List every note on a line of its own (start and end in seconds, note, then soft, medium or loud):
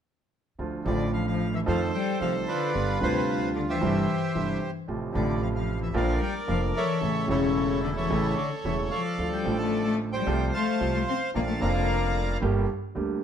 0.59 0.81 D2 soft
0.59 0.82 D2 soft
0.59 0.81 D3 soft
0.59 0.81 F3 soft
0.59 0.81 A3 soft
0.59 0.82 F4 soft
0.84 1.62 A1 medium
0.84 1.62 A2 medium
0.84 1.61 D3 medium
0.84 1.11 D3 medium
0.84 1.62 F3 soft
0.84 1.63 A3 soft
0.84 1.63 F4 medium
0.84 1.11 D5 medium
1.13 1.26 F3 medium
1.13 1.26 F5 medium
1.27 1.52 F3 medium
1.27 1.54 F5 medium
1.53 1.59 E3 medium
1.53 1.60 E5 medium
1.66 1.89 F2 medium
1.66 1.90 F2 medium
1.66 1.89 D#3 medium
1.66 1.89 F3 medium
1.66 1.80 F3 medium
1.66 1.89 A3 medium
1.66 1.89 C4 medium
1.66 1.89 F4 medium
1.66 2.70 A4 medium
1.66 2.70 C5 medium
1.66 1.80 F5 medium
1.94 2.19 G3 medium
1.94 2.19 G5 medium
2.20 2.43 C2 soft
2.20 2.43 C3 soft
2.20 2.43 D#3 soft
2.20 2.33 F3 medium
2.20 2.43 A3 soft
2.20 2.43 C4 soft
2.20 2.43 F4 soft
2.20 2.33 F5 medium
2.48 2.98 D3 medium
2.48 3.01 F4 medium
2.48 3.51 B4 medium
2.48 2.98 D5 medium
2.74 2.97 G1 soft
2.74 2.96 G2 soft
2.74 2.96 D3 soft
2.74 2.96 G3 soft
2.74 2.96 B3 soft
2.74 2.97 F4 soft
2.99 3.77 D2 medium
2.99 3.78 D2 medium
2.99 3.52 C3 medium
2.99 3.77 D3 medium
2.99 3.77 G3 soft
2.99 3.77 D4 soft
2.99 3.78 F4 medium
3.03 3.52 C5 medium
3.56 3.61 D3 medium
3.56 3.62 D5 medium
3.69 4.58 E3 medium
3.69 4.71 G4 medium
3.69 4.71 C5 soft
3.69 4.58 E5 medium
3.81 4.03 G1 medium
3.81 4.04 G1 medium
3.81 4.03 G2 medium
3.81 4.03 C3 medium
3.81 4.03 E3 medium
3.81 4.03 G3 medium
3.81 4.04 E4 medium
4.35 4.57 G1 soft
4.35 4.57 G2 soft
4.35 4.57 C3 soft
4.35 4.57 E3 soft
4.35 4.57 G3 soft
4.35 4.57 E4 soft
4.87 5.10 A1 soft
4.87 5.10 A2 soft
4.87 5.10 C3 soft
4.87 5.10 F3 soft
4.87 5.10 A3 soft
4.87 5.10 F4 soft
5.12 5.90 A1 medium
5.12 5.91 A1 medium
5.12 5.90 A2 medium
5.12 5.89 C3 medium
5.12 5.39 D3 medium
5.12 5.90 F3 soft
5.12 5.90 A3 medium
5.12 5.91 F4 medium
5.12 5.42 D5 medium
5.41 5.47 F3 medium
5.41 5.48 F5 medium
5.54 5.79 F3 medium
5.54 5.80 F5 medium
5.81 5.94 E3 medium
5.81 5.94 E5 medium
5.94 6.17 A#1 medium
5.94 6.17 A#2 medium
5.94 6.17 D3 medium
5.94 6.19 F3 medium
5.94 6.17 F3 medium
5.94 6.17 A#3 medium
5.94 6.17 F4 medium
5.94 6.98 A#4 medium
5.94 6.98 D5 medium
5.94 6.20 F5 medium
6.21 6.33 G3 medium
6.21 6.34 G5 medium
6.47 6.70 F1 soft
6.47 6.71 F1 medium
6.47 6.70 F2 soft
6.47 6.70 D3 soft
6.47 6.70 F3 soft
6.47 6.60 F3 medium
6.47 6.70 A#3 soft
6.47 6.70 F4 soft
6.47 6.61 F5 medium
6.75 7.25 E3 medium
6.75 7.29 A4 medium
6.75 7.28 C#5 medium
6.75 7.26 E5 medium
7.01 7.24 A1 soft
7.01 7.24 A2 soft
7.01 7.24 C#3 soft
7.01 7.24 E3 soft
7.01 7.24 A3 soft
7.01 7.24 E4 soft
7.27 8.06 E1 medium
7.27 8.06 E2 medium
7.27 8.05 C#3 medium
7.27 7.78 C#3 medium
7.27 8.05 E3 soft
7.27 8.06 A3 soft
7.27 8.34 E4 medium
7.27 7.95 A4 medium
7.27 7.80 C#5 medium
7.31 8.07 E4 medium
7.82 7.88 D3 medium
7.82 7.90 D5 medium
7.96 8.34 E3 medium
7.96 8.90 A4 medium
7.96 9.01 C#5 medium
7.96 8.34 E5 medium
8.10 8.33 A1 medium
8.10 8.33 A2 medium
8.10 8.33 C#3 medium
8.10 8.33 E3 medium
8.10 8.33 A3 medium
8.10 8.33 E4 medium
8.36 8.49 D3 medium
8.36 8.50 D5 medium
8.64 8.87 E1 soft
8.64 8.88 E1 soft
8.64 8.87 E2 soft
8.64 8.87 C#3 soft
8.64 8.77 E3 medium
8.64 8.88 E3 soft
8.64 8.88 A3 soft
8.64 8.88 E4 soft
8.64 8.77 E5 medium
8.91 9.29 F3 medium
8.91 9.96 A4 medium
8.91 9.96 D5 medium
8.91 9.29 F5 medium
9.18 9.41 D2 soft
9.18 9.41 D3 soft
9.18 9.41 F3 soft
9.18 9.41 A3 soft
9.18 9.42 F4 soft
9.32 9.57 G3 medium
9.32 9.58 G5 medium
9.43 10.22 A1 medium
9.43 10.23 A1 medium
9.43 10.23 A2 medium
9.43 10.22 D3 soft
9.43 10.22 F3 soft
9.43 10.23 A3 soft
9.47 10.24 F4 medium
9.58 9.84 A3 medium
9.58 9.83 A5 medium
9.84 9.98 A3 medium
9.84 9.97 A5 medium
10.12 10.52 G3 medium
10.12 10.53 C5 medium
10.12 10.50 G5 medium
10.26 10.49 C2 medium
10.26 10.50 C3 medium
10.26 10.49 F3 medium
10.26 10.49 A3 medium
10.26 10.50 F4 medium
10.53 10.92 A3 medium
10.53 11.31 C5 medium
10.53 11.31 F5 medium
10.53 10.93 A5 medium
10.80 11.03 C2 soft
10.80 11.03 C3 soft
10.80 11.03 F3 soft
10.80 11.03 A3 soft
10.80 11.03 F4 soft
10.94 11.02 A3 medium
10.94 11.00 A5 medium
11.08 11.21 C4 medium
11.08 11.20 C6 medium
11.34 11.57 A#1 soft
11.34 11.57 A#2 soft
11.34 11.57 D3 soft
11.34 11.57 F3 soft
11.34 11.57 A#3 soft
11.34 11.42 A#3 medium
11.34 11.57 F4 soft
11.34 11.60 D5 medium
11.34 11.60 F5 medium
11.34 11.41 A#5 medium
11.47 11.61 A3 medium
11.47 11.61 A5 medium
11.59 12.38 F1 medium
11.59 12.38 F2 medium
11.59 12.37 D3 soft
11.59 12.37 F3 soft
11.59 12.38 A#3 medium
11.59 12.38 D5 medium
11.59 12.38 F5 medium
11.59 12.37 A#5 medium
11.63 12.39 F4 medium
12.41 12.64 G1 medium
12.41 12.64 G2 medium
12.41 12.64 D3 medium
12.41 12.64 G3 medium
12.41 12.64 A#3 medium
12.41 12.64 G4 medium
12.95 13.18 D2 medium
12.95 13.18 D3 medium
12.95 13.18 G3 soft
12.95 13.18 A#3 soft
12.95 13.18 G4 soft